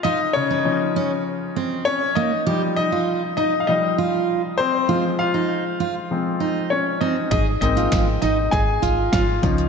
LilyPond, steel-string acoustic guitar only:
\new Staff \with { instrumentName = "Steel-string acoustic guitar" } { \time 4/4 \key aes \major \tempo 4 = 99 f'16 r8 ees'8 r16 des'16 r8. c'8 r8 bes16 r16 | g'16 r8 f'8 r16 ees'16 r8. f'8. r8. | f'16 r8 ees'8 r16 f'16 r8. ees'8 r8 c'16 r16 | aes'16 r8 f'8 r16 ees'16 r8. f'8. r8. | }